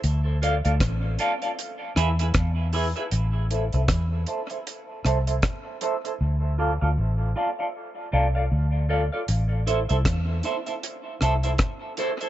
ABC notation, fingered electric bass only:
X:1
M:4/4
L:1/16
Q:"Swing 16ths" 1/4=78
K:Am
V:1 name="Fingered electric bass" clef=bass
D,,3 D,, A,,,2 z4 E,,2 E,,3 z | A,,,3 C,, E,,2 z4 C,,2 z4 | D,,3 D,, A,,,2 z4 C,,2 D,,3 z | A,,,3 C,, z6 C,,2 z4 |]